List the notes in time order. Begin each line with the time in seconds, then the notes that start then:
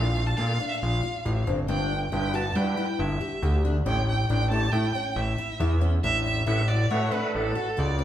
Already playing: A#1 F5
0.16 F4
0.26 A5
0.37 A#2 A#3 F4 A4 D5 F5
0.60 D4
0.69 E5
0.80 A#1 F5
1.03 F4
1.25 A1 F4
1.47 G1 C4
1.68 G1 D4 G5
2.12 G1 G3 E4 B4 G5
2.34 F#4 A5
2.55 G2 G3 E4 F#4 B4 G5
2.77 E4
2.99 G1 E5
3.21 G4
3.42 D2 G4
3.65 D4
3.85 A1 A3 C#4 G4 C#5 G5
4.09 G5
4.29 A1 D4 G5
4.50 A3 E4 G4 C#5 A5
4.72 A2 E4 G5
4.95 C#4
5.16 A1 E5
5.38 E4
5.60 E2 E4
5.81 C#4
6.04 A1 D4 E5
6.25 E5
6.46 A1 A3 E4 A4 B4 E5 F#5
6.68 F#4 D5
6.91 A2 A3 F#4 A4 B4 C#5 E5 F#5
7.12 D4 B4
7.35 A1 A4
7.55 F#4
7.77 C#2 F#4 D5
7.99 C#4